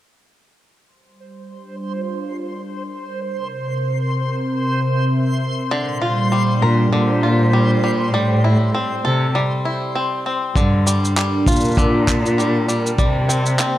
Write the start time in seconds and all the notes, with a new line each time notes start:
0.86 G3 C5 C6
1.37 D4
1.57 F4
1.90 A#4
3.29 C3
3.52 C4
4.40 E5
5.71 A#2 D3
5.79 G3
6.02 F4
6.22 D4
6.32 G3
6.62 A#2 A#4
6.92 A#2 D3
7.23 F4
7.53 G3
7.84 G3
8.14 A2 G3
8.44 E4
8.74 C4
9.04 C3 C4 A4
9.24 A4
9.35 G3
9.65 E4
9.95 C4
10.26 C4
10.55 G2 D3 A#4 A5, kick, shaker
10.73 D4
10.87 G3, shaker
11.05 shaker
11.16 G3 A#4, clap, shaker
11.46 A#2 F4, kick, shaker
11.52 shaker
11.56 shaker
11.60 shaker
11.65 F4, shaker
11.68 shaker
11.71 shaker
11.74 D3, kick, shaker
11.78 shaker
12.07 kick, clap, shaker
12.26 shaker
12.38 G3, shaker
12.68 G3, shaker
12.87 shaker
12.98 C3 G3, kick, shaker
13.24 C5
13.29 C4, shaker
13.41 A#3
13.46 shaker
13.55 C4 E4, clap
13.60 shaker